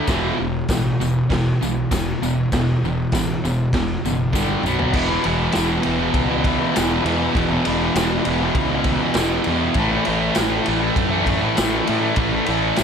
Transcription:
0.07 fingered electric bass E1, distorted electric guitar E2 B2 E3, kick, snare, tambourine, crash
0.40 fingered electric bass E1, distorted electric guitar E2 B2
0.68 fingered electric bass A1, distorted electric guitar E2 B2, kick, snare, tambourine, crash
1.00 fingered electric bass E1, distorted electric guitar E2 B2, tambourine
1.30 fingered electric bass E1, distorted electric guitar E2 B2, kick, snare, crash
1.62 fingered electric bass B1, distorted electric guitar E2 B2, tambourine
1.91 fingered electric bass E1, distorted electric guitar E2 B2, kick, snare, tambourine, crash
2.22 fingered electric bass E1, distorted electric guitar E2 B2, tambourine
2.52 fingered electric bass E1, distorted electric guitar E2 B2, kick, snare, tambourine, crash
2.83 fingered electric bass E1, distorted electric guitar E2 B2, tambourine
3.12 fingered electric bass A1, distorted electric guitar E2 B2, kick, snare, tambourine, crash
3.44 fingered electric bass E1, distorted electric guitar E2 B2, tambourine
3.73 fingered electric bass E1, distorted electric guitar E2 B2, kick, snare, crash
4.05 fingered electric bass F#1, distorted electric guitar E2 B2, tambourine
4.33 fingered electric bass G1, distorted electric guitar G2 D3 G3, kick, snare, tambourine
4.63 fingered electric bass B1, distorted electric guitar B2 F#3 B3, mid tom, tambourine
4.79 floor tom
4.93 fingered electric bass E1, distorted electric guitar E2 B2 E3, kick, crash
5.08 distorted electric guitar B2 E3
5.24 fingered electric bass E1, distorted electric guitar E2 B2 E3, ride
5.52 fingered electric bass E1, distorted electric guitar E2 B2, snare, ride, tambourine
5.57 distorted electric guitar E3
5.81 distorted electric guitar E2 B2, ride
5.85 fingered electric bass E1, distorted electric guitar E3
5.98 distorted electric guitar B2 E3
6.14 fingered electric bass C#2, kick, ride
6.28 distorted electric guitar B2 E3
6.44 distorted electric guitar E2 B2 E3, kick, ride
6.59 distorted electric guitar B2 E3
6.72 distorted electric guitar E2 B2, ride, tambourine
6.77 fingered electric bass E1, distorted electric guitar E3, snare
7.03 distorted electric guitar E2 B2 E3, fingered electric bass E2, ride
7.18 distorted electric guitar B2 E3
7.34 fingered electric bass E1, distorted electric guitar E2 B2, kick, ride
7.38 distorted electric guitar E3
7.49 distorted electric guitar E3
7.54 distorted electric guitar B2
7.65 fingered electric bass E1, distorted electric guitar E2 B2, ride
7.71 distorted electric guitar E3
7.95 fingered electric bass E1, distorted electric guitar E2 B2 E3, snare, ride, tambourine
8.25 fingered electric bass E1, distorted electric guitar E2 B2, ride
8.30 distorted electric guitar E3
8.41 distorted electric guitar B2 E3
8.55 fingered electric bass C#2, kick, ride
8.71 distorted electric guitar B2 E3
8.84 kick, ride
8.89 distorted electric guitar E2 B2 E3
9.02 distorted electric guitar B2 E3
9.14 fingered electric bass E1, distorted electric guitar E2, snare, ride, tambourine
9.19 distorted electric guitar B2 E3
9.44 distorted electric guitar E2, fingered electric bass E2, ride
9.48 distorted electric guitar B2 E3
9.61 distorted electric guitar B2 E3
9.74 fingered electric bass A1, distorted electric guitar A2, kick, ride
9.79 distorted electric guitar E3 A3
9.92 distorted electric guitar A3
9.97 distorted electric guitar E3
10.05 fingered electric bass A1, distorted electric guitar A2 E3, ride
10.09 distorted electric guitar A3
10.35 fingered electric bass A1, distorted electric guitar A2 E3, snare, ride, tambourine
10.40 distorted electric guitar A3
10.64 fingered electric bass A1, distorted electric guitar A2 E3, ride
10.68 distorted electric guitar A3
10.79 distorted electric guitar E3 A3
10.96 fingered electric bass F#2, kick, ride
11.10 distorted electric guitar E3 A3
11.26 distorted electric guitar A2 E3 A3, kick, ride
11.41 distorted electric guitar E3 A3
11.56 fingered electric bass A1, distorted electric guitar A2 E3, snare, ride, tambourine
11.61 distorted electric guitar A3
11.85 distorted electric guitar A2 E3, fingered electric bass A2, ride
11.89 distorted electric guitar A3
12.00 distorted electric guitar A3
12.04 distorted electric guitar E3
12.15 fingered electric bass A1, distorted electric guitar A2 E3, kick, ride
12.19 distorted electric guitar A3
12.32 distorted electric guitar E3 A3
12.46 fingered electric bass A1, distorted electric guitar A2 E3, ride
12.50 distorted electric guitar A3
12.76 fingered electric bass A1, distorted electric guitar A2 E3 A3, snare, ride, tambourine

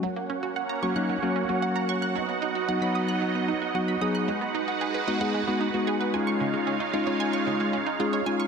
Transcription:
0.03 synth arpeggio sound F#3, supersaw synth A#3 C#4 F#4 C#5 F#5
0.16 synth arpeggio sound A#3
0.30 synth arpeggio sound C#4
0.43 synth arpeggio sound F#4
0.56 synth arpeggio sound F#5
0.69 synth arpeggio sound A#5
0.83 tine electric piano F#3 A#3 C#4 F#4, synth arpeggio sound C#6
0.96 tine electric piano F#3 A#3 C#4 D#4, synth arpeggio sound F#6
1.09 synth arpeggio sound F#3
1.22 tine electric piano F#3 A#3 C#4 F#4, synth arpeggio sound A#3
1.36 synth arpeggio sound C#4
1.49 tine electric piano F#3 A#3 C#4 F#4, synth arpeggio sound F#4
1.62 synth arpeggio sound F#5
1.76 synth arpeggio sound A#5
1.89 synth arpeggio sound C#6
2.02 synth arpeggio sound F#6
2.15 synth arpeggio sound F#3, supersaw synth F#3 B3 D#4 D#5
2.29 synth arpeggio sound B3
2.42 synth arpeggio sound D#4
2.55 synth arpeggio sound F#4
2.68 tine electric piano F#3 B3 D#4 F#4, synth arpeggio sound F#5
2.82 tine electric piano F#3 B3 D#4 F#4, synth arpeggio sound B5
2.95 synth arpeggio sound D#6
3.08 synth arpeggio sound F#6
3.22 synth arpeggio sound F#3
3.35 synth arpeggio sound B3
3.48 synth arpeggio sound D#4
3.62 synth arpeggio sound F#4
3.75 tine electric piano F#3 B3 D#4 F#4, synth arpeggio sound F#5
3.88 synth arpeggio sound B5
4.01 tine electric piano F#3 B3 D#4 G#4, synth arpeggio sound D#6
4.15 synth arpeggio sound F#6
4.28 supersaw synth G#3 F#4 B4 F#5, synth arpeggio sound G#3
4.41 synth arpeggio sound B3
4.55 synth arpeggio sound D#4
4.68 synth arpeggio sound F#4
4.81 synth arpeggio sound G#4
4.94 synth arpeggio sound B4
5.07 tine electric piano G#3 B3 D#4 F#4, synth arpeggio sound D#5
5.21 tine electric piano G#3 B3 D#4 G#4, synth arpeggio sound F#5
5.34 synth arpeggio sound G#3
5.47 tine electric piano G#3 B3 D#4 F#4, synth arpeggio sound B3
5.61 synth arpeggio sound D#4
5.74 tine electric piano G#3 B3 D#4 F#4, synth arpeggio sound F#4
5.87 synth arpeggio sound G#4
6.01 synth arpeggio sound B4
6.14 tine electric piano G#3 C#4 D#4 F4, supersaw synth G#3 D#4 F4 C#5 F5, synth arpeggio sound G#5
6.27 synth arpeggio sound C#6
6.40 synth arpeggio sound C#3
6.54 synth arpeggio sound G#3
6.67 synth arpeggio sound C#4
6.80 synth arpeggio sound D#4
6.93 tine electric piano G#3 C#4 D#4 F4, synth arpeggio sound F4
7.07 tine electric piano G#3 C#4 D#4 F4, synth arpeggio sound C#5
7.20 synth arpeggio sound G#5
7.33 synth arpeggio sound C#6
7.47 synth arpeggio sound C#3
7.60 synth arpeggio sound G#3
7.73 synth arpeggio sound C#4
7.87 synth arpeggio sound D#4
7.99 tine electric piano G#3 C#4 D#4 G#4, synth arpeggio sound F4
8.13 synth arpeggio sound C#5
8.26 tine electric piano G#3 C#4 D#4 F4, synth arpeggio sound G#5
8.40 synth arpeggio sound C#6

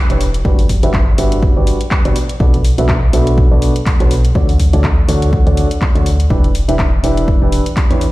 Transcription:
0.10 fm bass E1, upright piano E3 D4 E4 G4 B4 C#5, closed hi-hat
0.21 open hi-hat
0.34 closed hi-hat
0.45 fm bass G1, upright piano G3 D4 F#4 G4 B4 D5, kick
0.59 open hi-hat
0.69 kick, open hi-hat
0.83 fm bass G1, upright piano G3 D4 F#4 G4 B4 E5, closed hi-hat
0.94 kick, clap
1.18 fm bass G1, upright piano G3 D4 F#4 G4 B4 E5, open hi-hat
1.32 closed hi-hat
1.43 kick
1.56 fm bass G1, upright piano G3 D4 F#4 G4 B4 D5
1.67 open hi-hat
1.81 closed hi-hat
1.91 kick, clap
2.05 fm bass G1, upright piano B2 D4 F#4 G4 B4 D5, closed hi-hat
2.16 open hi-hat
2.29 closed hi-hat
2.40 fm bass B1, upright piano B2 D4 F#4 A4 B4 D5, kick
2.54 closed hi-hat
2.65 open hi-hat
2.78 fm bass B1, upright piano B2 D4 F#4 A4 B4 E5, closed hi-hat
2.89 kick, clap
3.13 fm bass B1, upright piano B2 D4 F#4 A4 B4 E5, open hi-hat
3.27 closed hi-hat
3.38 kick
3.51 fm bass B1, upright piano B2 D4 F#4 A4 B4 D5
3.62 open hi-hat
3.76 closed hi-hat
3.86 kick, clap, open hi-hat
4.00 fm bass B1, upright piano B2 D4 F#4 A4 B4 C#5, closed hi-hat
4.11 open hi-hat
4.25 closed hi-hat
4.35 fm bass D2, upright piano D3 D4 F#4 A4 C#5 D5, kick
4.49 open hi-hat
4.60 kick, open hi-hat
4.73 fm bass D2, upright piano D3 D4 F#4 A4 C#5 D5, closed hi-hat
4.84 kick, clap
5.08 fm bass D2, upright piano D3 D4 F#4 A4 C#5 D5, open hi-hat
5.22 closed hi-hat
5.33 kick
5.46 fm bass D2, upright piano D3 D4 F#4 A4 C#5 D5, closed hi-hat
5.57 open hi-hat
5.71 closed hi-hat
5.82 kick, clap
5.95 fm bass D2, upright piano D3 D4 F#4 A4 C#5 D5, closed hi-hat
6.06 open hi-hat
6.20 closed hi-hat
6.30 fm bass E1, upright piano E3 D4 E4 G4 B4 D5, kick
6.44 closed hi-hat
6.55 open hi-hat
6.68 fm bass E1, upright piano E3 D4 E4 G4 B4 E5, closed hi-hat
6.79 kick, clap
7.03 fm bass E1, upright piano E3 D4 E4 G4 B4 E5, open hi-hat
7.17 closed hi-hat
7.28 kick
7.42 fm bass E1, upright piano E3 D4 E4 G4 B4 D5
7.52 open hi-hat
7.66 closed hi-hat
7.77 kick, clap, open hi-hat
7.90 fm bass E2, upright piano E3 D4 E4 G4 B4 C#5, closed hi-hat
8.01 open hi-hat

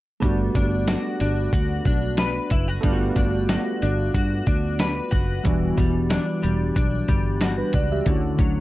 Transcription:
0.20 fingered electric bass G1, clean electric guitar G3, synth keys A3 B3 D4, kick, closed hi-hat
0.25 synth keys F#4
0.55 fingered electric bass G1, clean electric guitar D4, kick, snare, closed hi-hat
0.88 clean electric guitar F#4, snare, closed hi-hat
1.20 fingered electric bass G1, clean electric guitar D4, closed hi-hat
1.53 fingered electric bass D2, clean electric guitar F#4, kick, closed hi-hat
1.85 fingered electric bass B1, clean electric guitar D4, kick, closed hi-hat
2.17 clean electric guitar B4, snare, closed hi-hat
2.50 fingered electric bass F#1, clean electric guitar E4, kick, closed hi-hat
2.68 clean electric guitar F#4
2.81 fingered electric bass G1, clean electric guitar G3, synth keys A3 B3 D4, kick, closed hi-hat
2.86 synth keys F4
2.93 synth keys F#4
3.16 fingered electric bass G1, clean electric guitar D4, kick, snare, closed hi-hat
3.49 clean electric guitar F#4, snare, closed hi-hat
3.82 fingered electric bass G1, clean electric guitar D4, closed hi-hat
4.14 fingered electric bass G2, clean electric guitar F#4, kick, closed hi-hat
4.47 fingered electric bass D2, clean electric guitar D4, kick, closed hi-hat
4.79 clean electric guitar B4, snare, closed hi-hat
5.11 fingered electric bass F#1, clean electric guitar F#4, kick, closed hi-hat
5.44 fingered electric bass E1, clean electric guitar E3, synth keys G3 B3 D4, kick, closed hi-hat
5.49 synth keys F#4
5.77 fingered electric bass E1, clean electric guitar G3, kick, snare, closed hi-hat
6.10 clean electric guitar D4, snare, closed hi-hat
6.43 fingered electric bass E1, clean electric guitar G3, closed hi-hat
6.76 fingered electric bass B1, clean electric guitar D4, kick, closed hi-hat
7.08 fingered electric bass G1, clean electric guitar G3, kick, closed hi-hat
7.41 clean electric guitar F#4, snare, closed hi-hat
7.58 synth keys D4 B4
7.73 fingered electric bass C#2, clean electric guitar D4, synth keys F#4 D5, kick, closed hi-hat
7.92 synth keys G4 E5
8.05 fingered electric bass D2, clean electric guitar D3, synth keys A3 C#4 E4, kick, closed hi-hat
8.11 synth keys F#4
8.39 fingered electric bass D2, clean electric guitar F#3, kick, closed hi-hat

